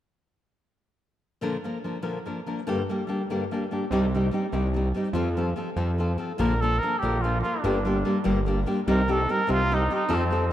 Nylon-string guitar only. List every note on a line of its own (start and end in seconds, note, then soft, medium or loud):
1.41 1.56 A#2 medium
1.41 1.56 D3 medium
1.41 1.56 F3 medium
1.41 1.56 A#3 medium
1.41 1.56 D4 medium
1.41 1.56 A#4 medium
1.64 1.77 F3 soft
1.64 1.77 A#3 soft
1.64 1.77 D4 soft
1.64 1.77 A#4 medium
1.84 1.97 F3 soft
1.84 1.97 A#3 soft
1.84 1.97 D4 soft
1.84 1.98 A#4 soft
2.02 2.17 A#2 soft
2.02 2.17 D3 medium
2.02 2.17 F3 medium
2.02 2.18 A#3 soft
2.02 2.18 D4 soft
2.02 2.18 A#4 medium
2.26 2.39 F3 soft
2.26 2.39 A#3 soft
2.26 2.39 D4 soft
2.26 2.39 A#4 soft
2.46 2.59 F3 soft
2.46 2.59 A#3 soft
2.46 2.59 D4 soft
2.46 2.60 A#4 soft
2.67 2.81 G2 medium
2.67 2.81 D3 medium
2.67 2.81 G3 medium
2.67 2.81 A#3 medium
2.67 2.81 D4 medium
2.67 2.82 G4 medium
2.89 3.01 G3 soft
2.89 3.02 A#3 soft
2.89 3.02 D4 medium
2.89 3.02 G4 medium
3.07 3.20 G3 soft
3.07 3.21 A#3 soft
3.07 3.21 D4 medium
3.07 3.21 G4 soft
3.30 3.43 G2 soft
3.30 3.43 D3 soft
3.30 3.43 G3 medium
3.30 3.43 A#3 medium
3.30 3.43 D4 medium
3.30 3.44 G4 medium
3.51 3.63 G3 soft
3.51 3.64 A#3 medium
3.51 3.64 D4 soft
3.51 3.64 G4 medium
3.71 3.83 G3 soft
3.71 3.83 A#3 soft
3.71 3.84 D4 soft
3.71 3.84 G4 soft
3.92 4.05 C3 medium
3.92 4.05 G3 medium
3.92 4.05 C4 medium
3.92 4.05 D#4 medium
3.92 4.05 G4 medium
4.14 4.26 G3 medium
4.14 4.26 C4 soft
4.14 4.26 D#4 soft
4.14 4.27 G4 medium
4.31 4.44 G3 medium
4.31 4.45 C4 medium
4.31 4.45 D#4 soft
4.31 4.45 G4 medium
4.52 4.66 C3 medium
4.52 4.66 G3 soft
4.52 4.66 C4 medium
4.52 4.67 D#4 medium
4.52 4.67 G4 medium
4.74 4.86 G3 soft
4.74 4.87 C4 medium
4.74 4.88 D#4 medium
4.74 4.88 G4 medium
4.94 5.06 G3 soft
4.94 5.07 C4 soft
4.94 5.08 D#4 medium
4.94 5.08 G4 medium
5.13 5.27 F3 medium
5.13 5.28 C4 medium
5.13 5.28 F4 medium
5.13 5.28 A4 medium
5.37 5.49 F3 medium
5.37 5.49 C4 medium
5.37 5.49 F4 soft
5.37 5.50 A4 medium
5.56 5.68 F3 soft
5.56 5.69 C4 soft
5.56 5.69 F4 medium
5.56 5.69 A4 soft
5.76 5.90 F3 medium
5.76 5.90 C4 medium
5.76 5.91 F4 medium
5.76 5.91 A4 medium
5.98 6.11 F3 medium
5.98 6.12 C4 soft
5.98 6.12 F4 medium
5.98 6.12 A4 medium
6.18 6.31 F3 soft
6.18 6.31 C4 soft
6.18 6.32 F4 soft
6.18 6.32 A4 soft
6.38 6.52 A#2 medium
6.38 6.53 D3 medium
6.38 6.53 F3 medium
6.38 6.53 A#3 medium
6.38 6.53 D4 medium
6.38 6.53 A#4 medium
6.62 6.74 F3 medium
6.62 6.74 A#3 medium
6.62 6.75 D4 medium
6.62 6.75 A#4 medium
6.83 6.94 F3 medium
6.83 6.94 A#3 soft
6.83 6.95 D4 soft
6.83 6.95 A#4 soft
7.02 7.16 A#2 soft
7.02 7.16 D3 medium
7.02 7.16 F3 medium
7.02 7.16 A#3 medium
7.02 7.17 D4 soft
7.02 7.16 A#4 medium
7.24 7.36 F3 soft
7.24 7.36 A#3 medium
7.24 7.36 D4 medium
7.24 7.37 A#4 soft
7.44 7.56 F3 soft
7.44 7.56 A#3 medium
7.44 7.56 D4 soft
7.44 7.57 A#4 medium
7.64 7.77 G2 medium
7.64 7.78 D3 medium
7.64 7.78 G3 medium
7.64 7.77 A#3 medium
7.64 7.77 D4 medium
7.64 7.78 G4 medium
7.85 7.97 G3 medium
7.85 7.98 A#3 soft
7.85 7.98 D4 soft
7.85 7.98 G4 medium
8.05 8.17 G3 medium
8.05 8.18 A#3 soft
8.05 8.18 D4 soft
8.05 8.18 G4 soft
8.24 8.38 G2 medium
8.24 8.38 D3 medium
8.24 8.38 G3 medium
8.24 8.39 A#3 medium
8.24 8.39 D4 medium
8.24 8.39 G4 medium
8.46 8.59 G3 soft
8.46 8.59 A#3 medium
8.46 8.60 D4 medium
8.46 8.60 G4 medium
8.66 8.79 G3 soft
8.66 8.79 A#3 soft
8.66 8.79 D4 medium
8.66 8.79 G4 medium
8.87 9.00 C3 medium
8.87 9.01 G3 medium
8.87 9.01 C4 medium
8.87 9.01 D#4 medium
8.87 9.01 G4 medium
9.08 9.20 G3 medium
9.08 9.21 C4 medium
9.08 9.21 D#4 soft
9.08 9.21 G4 medium
9.29 9.40 G3 soft
9.29 9.41 C4 medium
9.29 9.41 D#4 medium
9.29 9.41 G4 medium
9.47 9.61 C3 medium
9.47 9.62 G3 medium
9.47 9.62 C4 medium
9.47 9.62 D#4 medium
9.47 9.62 G4 medium
9.71 9.83 G3 medium
9.71 9.83 C4 medium
9.71 9.83 D#4 medium
9.71 9.83 G4 medium
9.90 10.02 G3 soft
9.90 10.02 C4 soft
9.90 10.02 D#4 medium
9.90 10.03 G4 medium
10.08 10.22 F3 medium
10.08 10.22 C4 medium
10.08 10.23 F4 medium
10.08 10.23 A4 medium
10.31 10.43 F3 medium
10.31 10.44 C4 soft
10.31 10.44 F4 soft
10.31 10.44 A4 medium